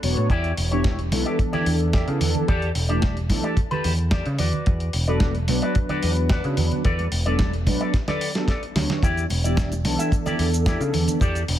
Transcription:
0.02 picked electric bass E1, analog polysynth F#3 B3 D4 C#5, muted clean electric guitar stroke, open hi-hat
0.17 picked electric bass A2, closed hi-hat
0.30 picked electric bass E2, clean electric guitar E4 G4 D5, kick, closed hi-hat
0.44 closed hi-hat
0.57 picked electric bass E1, open hi-hat
0.71 analog polysynth E3 B3 D4 G4, clean electric guitar E4 G4 C#5, closed hi-hat
0.84 kick, snare, closed hi-hat, high conga
0.99 closed hi-hat
1.11 picked electric bass B1, analog polysynth E3 B3 D4 A4, open hi-hat, high conga
1.25 clean electric guitar E4 G4 D5, closed hi-hat
1.39 kick, closed hi-hat
1.53 clean electric guitar E4 G4 D5, closed hi-hat, low conga
1.66 picked electric bass E2, open hi-hat
1.80 closed hi-hat
1.93 clean electric guitar E4 G4 D5, kick, snare, closed hi-hat
2.07 picked electric bass C#3, analog polysynth E3 B3 D4 A4, closed hi-hat
2.21 picked electric bass E2, muted clean electric guitar stroke, open hi-hat, low conga
2.35 closed hi-hat, low conga
2.48 picked electric bass E2, clean electric guitar G4 A4 D5, kick, closed hi-hat
2.62 closed hi-hat
2.75 picked electric bass E1, open hi-hat
2.89 analog polysynth E3 A3 D4 G4, clean electric guitar G4 A4 D5, closed hi-hat
3.02 kick, snare, closed hi-hat, high conga
3.17 closed hi-hat
3.29 picked electric bass B1, analog polysynth E3 A3 D4 A4, kick, open hi-hat, high conga
3.43 clean electric guitar G4 A4 D5, closed hi-hat
3.57 kick, closed hi-hat
3.71 clean electric guitar G4 A4 B4, closed hi-hat, low conga
3.84 picked electric bass E2, open hi-hat
3.99 closed hi-hat
4.11 clean electric guitar G4 A4 D5, kick, snare, closed hi-hat
4.26 picked electric bass C#3, closed hi-hat
4.39 picked electric bass E2, clean electric guitar F#4 B4 D5, open hi-hat, low conga
4.53 closed hi-hat, low conga
4.66 picked electric bass E2, kick, closed hi-hat
4.80 closed hi-hat
4.93 picked electric bass E1, open hi-hat
5.07 analog polysynth F#3 B3 D4 A4, clean electric guitar F#4 B4 D5, closed hi-hat
5.20 kick, snare, closed hi-hat, high conga
5.35 closed hi-hat
5.47 picked electric bass B1, analog polysynth F#3 B3 D4 B4, open hi-hat, high conga
5.62 clean electric guitar F#4 B4 D5, closed hi-hat
5.75 kick, closed hi-hat
5.89 clean electric guitar F#4 B4 D5, closed hi-hat, low conga
6.03 picked electric bass E2, open hi-hat
6.17 closed hi-hat
6.29 clean electric guitar F#4 B4 D5, kick, snare, closed hi-hat
6.44 picked electric bass C#3, analog polysynth F#3 B3 D4 B4, closed hi-hat
6.57 picked electric bass E2, muted clean electric guitar stroke, open hi-hat, low conga
6.72 closed hi-hat, low conga
6.84 picked electric bass E2, clean electric guitar A4 B4 D5, kick, closed hi-hat
6.99 closed hi-hat, high conga
7.12 picked electric bass E1, open hi-hat
7.25 analog polysynth F#3 B3 D4 A4, clean electric guitar A4 B4 D5, closed hi-hat
7.39 kick, snare, closed hi-hat, high conga
7.53 closed hi-hat
7.66 picked electric bass B1, analog polysynth F#3 B3 D4 B4, kick, open hi-hat, high conga
7.80 clean electric guitar A4 B4 D5, closed hi-hat
7.94 kick, snare, closed hi-hat
8.08 clean electric guitar A4 B4 D5, snare, closed hi-hat, low conga
8.21 open hi-hat
8.34 analog polysynth F#3 B3 D4 A4, snare, closed hi-hat
8.48 clean electric guitar A4 B4 D5, kick, snare, closed hi-hat
8.63 closed hi-hat
8.75 picked electric bass D2, analog polysynth F#3 B3 D4 C#5, muted clean electric guitar stroke, snare, open hi-hat, low conga
8.89 snare, closed hi-hat, low conga
9.03 picked electric bass E2, clean electric guitar E4 G4 D5, kick, closed hi-hat, shaker
9.17 closed hi-hat, shaker
9.30 picked electric bass E1, open hi-hat, muted conga
9.44 analog polysynth E3 B3 D4 G4, clean electric guitar E4 G4 D5, closed hi-hat, shaker
9.57 kick, snare, closed hi-hat, high conga, shaker
9.72 closed hi-hat, muted conga, shaker
9.83 picked electric bass B1, analog polysynth E3 B3 D4 A4, open hi-hat, high conga
9.99 clean electric guitar E4 G4 E5, closed hi-hat, shaker
10.12 kick, closed hi-hat, shaker
10.26 clean electric guitar E4 G4 D5, closed hi-hat, muted conga, low conga, shaker
10.39 picked electric bass E2, open hi-hat
10.53 closed hi-hat, shaker
10.66 clean electric guitar E4 G4 D5, kick, snare, closed hi-hat, muted conga, shaker
10.80 picked electric bass C#3, analog polysynth E3 B3 D4 A4, closed hi-hat, shaker
10.93 picked electric bass E2, muted clean electric guitar stroke, open hi-hat, low conga
11.07 closed hi-hat, low conga, shaker
11.20 picked electric bass E2, clean electric guitar G4 A4 D5, kick, closed hi-hat, muted conga, shaker
11.35 closed hi-hat, shaker
11.48 picked electric bass E1, open hi-hat

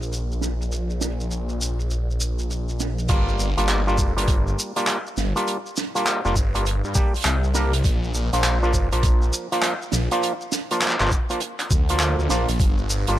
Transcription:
Already playing: detuned saw bass A#1, clav F3 A#3 D4 F4
0.01 closed hi-hat, shekere
0.12 closed hi-hat, shekere
0.32 shekere
0.41 snare, shekere
0.61 closed hi-hat, shekere
0.72 closed hi-hat, shekere
0.90 closed hi-hat, shekere
1.01 snare, shekere
1.11 closed hi-hat
1.20 shekere
1.30 closed hi-hat, shekere
1.49 closed hi-hat, shekere
1.61 shekere
1.79 closed hi-hat, shekere
1.91 closed hi-hat, shekere
2.10 shekere
2.21 shekere
2.39 closed hi-hat, shekere
2.50 closed hi-hat, shekere
2.69 closed hi-hat, shekere
2.80 snare, shekere
2.98 closed hi-hat, shekere
3.09 detuned saw bass G1, clav G3 A#3 D4 F4, kick, closed hi-hat, crash, shekere
3.29 shekere
3.39 detuned saw bass G1, shekere
3.57 detuned saw bass G1, clav G3 A#3 D4 F4, closed hi-hat, shekere
3.69 clap, closed hi-hat, shekere
3.87 clav G3 A#3 D4 F4, shekere
3.98 kick, shekere
4.17 detuned saw bass G1, clav G3 A#3 D4 F4, closed hi-hat, shekere
4.28 kick, closed hi-hat, shekere
4.47 shekere
4.59 shekere
4.76 clav G3 A#3 D4 F4, closed hi-hat, shekere
4.87 clap, closed hi-hat, shekere
5.07 shekere
5.17 detuned saw bass G1, snare, shekere
5.36 clav G3 A#3 D4 F4, closed hi-hat, shekere
5.47 closed hi-hat, shekere
5.66 shekere
5.77 snare, shekere
5.95 clav G3 A#3 D4 F4, closed hi-hat, shekere
6.06 clap, closed hi-hat, shekere
6.25 detuned saw bass F1, clav G3 A#3 D4 F4, shekere
6.36 detuned saw bass G1, kick, shekere
6.55 clav G3 A#3 D4 F4, closed hi-hat, shekere
6.66 closed hi-hat, shekere
6.84 detuned saw bass G2, shekere
6.95 clav G3 A#3 D4 G4, kick, shekere
7.15 closed hi-hat, shekere
7.17 closed hi-hat
7.21 closed hi-hat
7.24 detuned saw bass C2, clap, closed hi-hat, shekere
7.44 shekere
7.55 clav G3 A#3 D4 A#4, snare, shekere
7.73 closed hi-hat, shekere
7.84 detuned saw bass A#1, kick, closed hi-hat, shekere
8.04 shekere
8.14 detuned saw bass A#1, shekere
8.33 detuned saw bass A#1, clav F3 A#3 D4 F4, closed hi-hat, shekere
8.43 clap, closed hi-hat, shekere
8.63 clav F3 A#3 D4 F4, shekere
8.74 kick, shekere
8.92 detuned saw bass A#1, clav F3 A#3 D4 F4, closed hi-hat, shekere
9.03 kick, closed hi-hat, shekere
9.22 shekere
9.33 shekere
9.52 clav F3 A#3 D4 F4, closed hi-hat, shekere
9.62 clap, closed hi-hat, shekere
9.82 shekere
9.92 detuned saw bass A#1, snare, shekere
10.11 clav F3 A#3 D4 F4, closed hi-hat, shekere
10.23 closed hi-hat, shekere
10.41 shekere
10.52 snare, shekere
10.71 clav F3 A#3 D4 F4, closed hi-hat, shekere
10.81 clap, closed hi-hat, shekere
10.88 clap
10.91 clap
11.00 detuned saw bass G1, clav F3 A#3 D4 F4, clap, shekere
11.07 clap
11.11 kick, shekere
11.30 clav F3 A#3 D4 F4, closed hi-hat, shekere
11.40 closed hi-hat, shekere
11.59 clap, closed hi-hat, shekere
11.71 detuned saw bass D2, kick, shekere
11.89 clav F3 A#3 D4 F4, closed hi-hat, shekere
11.99 clap, closed hi-hat, shekere
12.19 detuned saw bass D2, shekere
12.29 detuned saw bass A#1, clav F3 A#3 D4 F4, snare, shekere
12.48 detuned saw bass A#1, closed hi-hat, shekere
12.60 detuned saw bass G1, kick, closed hi-hat, shekere
12.78 shekere
12.89 detuned saw bass G1, shekere
13.07 detuned saw bass G1, clav G3 A#3 D4 F4, closed hi-hat, shekere

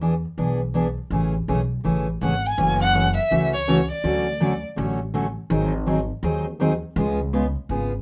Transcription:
Already playing: upright bass E2
0.01 steel-string acoustic guitar E3 B3 D4 G#4
0.38 upright bass B1, steel-string acoustic guitar E3 B3 D4 G#4
0.74 steel-string acoustic guitar E3 B3 D4 G#4
1.10 upright bass A1, steel-string acoustic guitar C#3 E3 A3 C#4 G#4
1.48 upright bass B1, steel-string acoustic guitar C#3 E3 A3 C#4 G#4
1.84 upright bass A1, steel-string acoustic guitar C#3 E3 A3 C#4 G#4
2.21 upright bass G#1, steel-string acoustic guitar C#3 E3 A3 C#4 G#4, violin F#5
2.46 violin G#5
2.58 upright bass F#1, steel-string acoustic guitar C#3 E3 A3 C#4 F#4
2.81 violin F#5
2.95 steel-string acoustic guitar C#3 E3 A3 C#4 F#4
3.16 violin E5
3.31 upright bass C#2, steel-string acoustic guitar C#3 E3 A3 C#4 F#4
3.54 violin C#5
3.68 steel-string acoustic guitar C#3 E3 A3 C#4 F#4
3.91 violin D5
4.04 upright bass D2, steel-string acoustic guitar D3 F#3 A3 C#4 F#4
4.40 steel-string acoustic guitar D3 F#3 A3 C#4 F#4
4.76 upright bass A1, steel-string acoustic guitar D3 F#3 A3 C#4 F#4
5.14 steel-string acoustic guitar D3 F#3 A3 C#4 F#4
5.50 upright bass G#1, steel-string acoustic guitar D#3 F#3 C4 D#4 G#4
5.86 steel-string acoustic guitar D#3 F#3 C4 D#4 G#4
6.23 upright bass D#2, steel-string acoustic guitar D#3 F#3 C4 D#4 G#4
6.60 steel-string acoustic guitar D#3 F#3 C4 D#4 G#4
6.96 upright bass C#2, steel-string acoustic guitar C#3 G#3 B3 F4 G#4
7.33 steel-string acoustic guitar C#3 G#3 B3 F4 G#4
7.69 upright bass G#1, steel-string acoustic guitar C#3 G#3 B3 F4 G#4

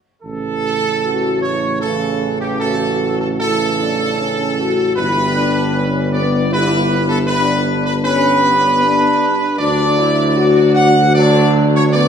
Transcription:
0.22 tuba A1, trombone section C#3 E3, trumpet section A4
1.05 french horn section F#4
1.42 french horn section E4, trumpet section C#5
1.81 trombone section C#3 E3, trumpet section A4
2.40 trumpet section G4
2.60 trombone section C#3 E3, french horn section F#4, trumpet section A4
3.20 trumpet section A4
3.39 trombone section C#3 E3, french horn section E4, trumpet section A4
3.80 french horn section D4
4.20 french horn section C#4
4.60 french horn section F#4
4.96 tuba G1, trombone section D3 G3, french horn section E4, trumpet section B4
5.36 french horn section D4
5.75 french horn section C#4
6.13 french horn section B3, trumpet section D5
6.51 trombone section D3 G3, french horn section E4, trumpet section B4
7.09 trumpet section A4
7.27 trombone section D3 G3, french horn section D4, trumpet section B4
7.85 trumpet section B4
8.04 trombone section D3 G3, french horn section C#4, trumpet section B4
8.45 french horn section B3
8.83 french horn section D4
9.59 tuba D2, trombone section D3 F#3, french horn section D4, trumpet section D5
9.99 french horn section E4
10.37 french horn section F#4
10.75 trumpet section F#5
11.14 trombone section D3 F#3, french horn section D4, trumpet section D5
11.74 trumpet section C#5
11.92 trombone section D3 F#3, french horn section B3, trumpet section D5

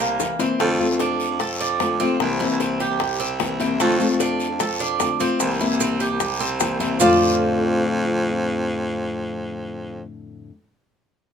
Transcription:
Already playing: baritone saxophone C2
0.00 cuban tres A#3, high bongo, maracas
0.19 nylon-string guitar E3 A#3 C4 E4, high bongo, short guiro, maracas
0.39 nylon-string guitar E3 A#3 C4 E4, cuban tres C4, low bongo, short guiro, maracas
0.59 baritone saxophone F2, nylon-string guitar D3 A3 C4 F4, cuban tres A3, high bongo, long guiro
0.79 nylon-string guitar A3 C4 F4
0.90 baritone saxophone F2
0.99 cuban tres D4, high bongo, short guiro
1.20 short guiro
1.30 baritone saxophone F2
1.39 cuban tres A4, muted nylon-string guitar stroke, high bongo, long guiro
1.61 cuban tres D4
1.79 nylon-string guitar D3 A3 C4 F4, high bongo, low bongo, short guiro
2.00 nylon-string guitar A3 C4 F4, cuban tres C4, short guiro
2.20 baritone saxophone C2, nylon-string guitar C3 E3 A#3 C4 E4, high bongo, long guiro
2.40 nylon-string guitar E3 A#3 C4 E4, cuban tres E4, high bongo
2.50 baritone saxophone C2
2.60 cuban tres C4, high bongo, short guiro
2.80 cuban tres G4, short guiro
2.90 baritone saxophone C2
3.00 muted nylon-string guitar stroke, high bongo, long guiro
3.20 cuban tres C4, high bongo
3.40 nylon-string guitar E3 A#3 C4 E4, high bongo, low bongo, short guiro
3.59 nylon-string guitar E3 A#3 C4 E4, cuban tres C4, high bongo, short guiro
3.79 baritone saxophone F2, nylon-string guitar D3 A3 C4 F4, cuban tres A3, high bongo, long guiro, maracas
3.99 nylon-string guitar A3 C4 F4, maracas
4.10 baritone saxophone F2
4.20 cuban tres D4, high bongo, short guiro, maracas
4.40 short guiro, maracas
4.50 baritone saxophone F2
4.59 cuban tres A4, muted nylon-string guitar stroke, high bongo, long guiro, maracas
4.80 cuban tres D4, maracas
5.00 nylon-string guitar D3 A3 C4 F4, high bongo, low bongo, short guiro, maracas
5.20 nylon-string guitar A3 C4 F4, cuban tres C4, short guiro, maracas
5.40 baritone saxophone C2, nylon-string guitar C3 E3 A#3 C4 E4, high bongo, long guiro, maracas
5.60 nylon-string guitar E3 A#3 C4 E4, cuban tres E4, high bongo, maracas
5.70 baritone saxophone C2
5.80 cuban tres C4, high bongo, short guiro, maracas
6.00 cuban tres G4, short guiro, maracas
6.10 baritone saxophone C2
6.20 muted nylon-string guitar stroke, high bongo, long guiro, maracas
6.40 cuban tres C4, high bongo, maracas
6.60 nylon-string guitar E3 A#3 C4 E4, high bongo, low bongo, short guiro, maracas
6.80 nylon-string guitar E3 A#3 C4 E4, cuban tres C4, high bongo, short guiro, maracas
6.99 nylon-string guitar F2 A2 D3 A3 C4 F4, baritone saxophone F2, cuban tres F4 C5 D5, low bongo, long guiro, maracas

